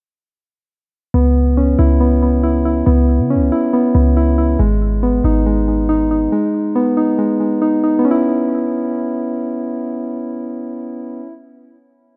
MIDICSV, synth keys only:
0, 0, Header, 1, 2, 480
1, 0, Start_track
1, 0, Key_signature, 4, "minor"
1, 0, Tempo, 431655
1, 1270, Time_signature, 4, 2, 24, 8
1, 13531, End_track
2, 0, Start_track
2, 0, Title_t, "Synth keys"
2, 0, Program_c, 0, 88
2, 1270, Note_on_c, 0, 59, 100
2, 1749, Note_on_c, 0, 61, 84
2, 1986, Note_on_c, 0, 64, 88
2, 2217, Note_off_c, 0, 59, 0
2, 2230, Note_on_c, 0, 59, 92
2, 2461, Note_off_c, 0, 59, 0
2, 2474, Note_on_c, 0, 59, 82
2, 2694, Note_off_c, 0, 64, 0
2, 2707, Note_on_c, 0, 64, 83
2, 2937, Note_off_c, 0, 64, 0
2, 2951, Note_on_c, 0, 64, 84
2, 3170, Note_off_c, 0, 59, 0
2, 3183, Note_on_c, 0, 59, 95
2, 3190, Note_off_c, 0, 61, 0
2, 3673, Note_on_c, 0, 61, 82
2, 3901, Note_off_c, 0, 64, 0
2, 3915, Note_on_c, 0, 64, 87
2, 4137, Note_off_c, 0, 59, 0
2, 4150, Note_on_c, 0, 59, 94
2, 4376, Note_off_c, 0, 59, 0
2, 4390, Note_on_c, 0, 59, 82
2, 4621, Note_off_c, 0, 64, 0
2, 4634, Note_on_c, 0, 64, 87
2, 4858, Note_off_c, 0, 64, 0
2, 4871, Note_on_c, 0, 64, 84
2, 5107, Note_on_c, 0, 56, 98
2, 5110, Note_off_c, 0, 59, 0
2, 5111, Note_off_c, 0, 64, 0
2, 5112, Note_off_c, 0, 61, 0
2, 5591, Note_on_c, 0, 59, 83
2, 5834, Note_on_c, 0, 63, 91
2, 6062, Note_off_c, 0, 56, 0
2, 6075, Note_on_c, 0, 56, 90
2, 6299, Note_off_c, 0, 56, 0
2, 6312, Note_on_c, 0, 56, 69
2, 6536, Note_off_c, 0, 63, 0
2, 6550, Note_on_c, 0, 63, 93
2, 6780, Note_off_c, 0, 63, 0
2, 6793, Note_on_c, 0, 63, 79
2, 7017, Note_off_c, 0, 56, 0
2, 7030, Note_off_c, 0, 59, 0
2, 7031, Note_on_c, 0, 56, 94
2, 7511, Note_on_c, 0, 59, 88
2, 7738, Note_off_c, 0, 63, 0
2, 7752, Note_on_c, 0, 63, 81
2, 7976, Note_off_c, 0, 56, 0
2, 7990, Note_on_c, 0, 56, 91
2, 8216, Note_off_c, 0, 56, 0
2, 8230, Note_on_c, 0, 56, 78
2, 8456, Note_off_c, 0, 63, 0
2, 8470, Note_on_c, 0, 63, 87
2, 8699, Note_off_c, 0, 63, 0
2, 8713, Note_on_c, 0, 63, 85
2, 8870, Note_off_c, 0, 59, 0
2, 8884, Note_on_c, 0, 59, 86
2, 8950, Note_off_c, 0, 56, 0
2, 8950, Note_on_c, 0, 61, 76
2, 8951, Note_off_c, 0, 63, 0
2, 9017, Note_on_c, 0, 64, 93
2, 12468, Note_off_c, 0, 59, 0
2, 12534, Note_off_c, 0, 61, 0
2, 12601, Note_off_c, 0, 64, 0
2, 13531, End_track
0, 0, End_of_file